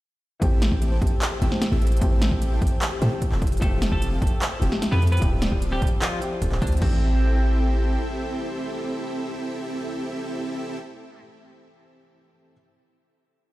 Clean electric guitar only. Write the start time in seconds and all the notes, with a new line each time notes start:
3.62 A3 A4
3.92 A3 A4
4.92 B3 B4
5.12 B3 B4
5.72 G3 G4
6.02 F3 F4
6.62 D3 D4
6.82 C4